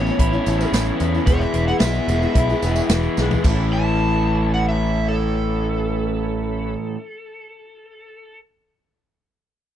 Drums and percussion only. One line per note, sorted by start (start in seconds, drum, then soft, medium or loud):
0.07 tambourine soft
0.19 kick medium
0.19 closed hi-hat loud
0.33 tambourine soft
0.46 closed hi-hat medium
0.46 tambourine medium
0.61 tambourine medium
0.74 snare loud
0.74 closed hi-hat medium
0.74 tambourine medium
0.87 tambourine soft
1.00 closed hi-hat medium
1.00 tambourine medium
1.15 tambourine soft
1.27 kick loud
1.27 closed hi-hat medium
1.27 tambourine soft
1.41 tambourine soft
1.54 closed hi-hat medium
1.54 tambourine soft
1.69 tambourine soft
1.80 snare loud
1.80 closed hi-hat loud
1.80 tambourine loud
1.95 tambourine soft
2.08 closed hi-hat medium
2.08 tambourine medium
2.22 tambourine soft
2.35 kick medium
2.35 closed hi-hat medium
2.35 tambourine soft
2.50 tambourine soft
2.62 closed hi-hat medium
2.62 tambourine medium
2.76 tambourine medium
2.89 snare loud
2.89 closed hi-hat medium
2.89 tambourine loud
3.03 tambourine soft
3.17 snare medium
3.17 tambourine medium
3.31 floor tom medium
3.31 tambourine soft
3.44 kick loud
3.44 crash medium
3.44 tambourine medium